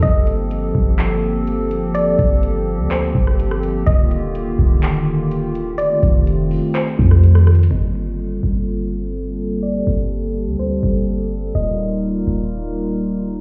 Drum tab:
HH |x-----x-----x-----------x-----------x-----x-----|x-----x-----x-----------x-----------x-----x-----|x-----x-----x-----------x-----------x-----x-----|x-----x-----x-----o-----x-----------x-----x-x-x-|
CP |------------------------x-----------------------|------------------------x-----------------------|------------------------x-----------------------|------------------------x-----------------------|
SD |------------------------------------------------|---------------------------------r-----r--------|------------------------------------------------|---------------------------------r-----r--r-----|
BD |o-----------------o-----------------------------|------o-----------------------o-----------------|o-----------------o-----------------------------|------o-----------------------o-----------------|

HH |------------------------------------------------|------------------------------------------------|------------------------------------------------|
CP |------------------------------------------------|------------------------------------------------|------------------------------------------------|
SD |------------------------------------------------|------------------------------------------------|------------------------------------------------|
BD |------------------------------------------------|------------------------------------------------|------------------------------------------------|